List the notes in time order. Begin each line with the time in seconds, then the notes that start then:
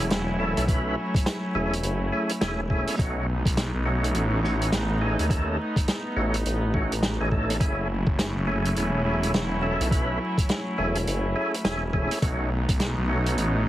Already playing: F#3 A3 C#4 E4
0.10 E1, snare, closed hi-hat
0.39 A3 C#4 E4 A4
0.57 B1, closed hi-hat
0.68 A3 C#4 E4 B4, kick, closed hi-hat
1.14 kick, closed hi-hat
1.26 snare, closed hi-hat
1.55 E1 A3 C#4 E4 G#4
1.73 closed hi-hat
1.83 F#1, closed hi-hat
2.12 A3 C#4 E4 G#4
2.29 closed hi-hat
2.41 E1 A3 C#4 E4 G#4, snare, closed hi-hat
2.70 A3 C#4 E4 G#4, kick
2.87 snare, closed hi-hat
2.90 snare
2.94 snare
2.96 snare
2.98 B1 A3 B3 C#4 D#4 F#4, kick, snare, closed hi-hat
3.45 B1, kick, closed hi-hat
3.57 snare, closed hi-hat
3.74 B1
3.85 A3 C#4 D#4 F#4
4.04 closed hi-hat
4.15 A1, closed hi-hat
4.43 A3 C#4 D#4 F#4, snare
4.62 closed hi-hat
4.72 A1, snare, closed hi-hat
5.01 A3 C#4 D#4 G#4
5.19 D#2, closed hi-hat
5.30 A3 C#4 D#4 A4, kick, closed hi-hat
5.76 kick, closed hi-hat
5.88 snare, closed hi-hat
6.16 A1 A3 C#4 D#4 F#4
6.34 closed hi-hat
6.46 A1, closed hi-hat
6.74 A3 C#4 D#4 F#4, kick
6.92 A1, closed hi-hat
7.03 snare, closed hi-hat
7.20 A1 A3 C#4 D#4 G#4
7.32 A3 C#4 D#4 A4, kick
7.50 snare, closed hi-hat
7.60 F#1 F#3 A3 C#4 E4 G#4, kick, closed hi-hat
8.07 F#1, kick
8.19 snare, closed hi-hat
8.36 F#1
8.47 A3 C#4 E4 G#4
8.65 closed hi-hat
8.76 E1, closed hi-hat
9.05 A3 C#4 E4 G#4
9.23 closed hi-hat
9.34 E1, snare, closed hi-hat
9.62 A3 C#4 E4 A4
9.80 B1, closed hi-hat
9.91 A3 C#4 E4 B4, kick, closed hi-hat
10.38 kick, closed hi-hat
10.49 snare, closed hi-hat
10.78 E1 A3 C#4 E4 G#4
10.95 closed hi-hat
11.07 F#1, closed hi-hat
11.36 A3 C#4 E4 G#4
11.54 closed hi-hat
11.65 E1 A3 C#4 E4 G#4, snare, closed hi-hat
11.93 A3 C#4 E4 G#4, kick
12.11 snare, closed hi-hat
12.22 B1 A3 B3 C#4 D#4 F#4, kick, closed hi-hat
12.69 B1, kick, closed hi-hat
12.80 snare, closed hi-hat
12.97 B1
13.09 A3 C#4 D#4 F#4
13.26 closed hi-hat
13.38 A1, closed hi-hat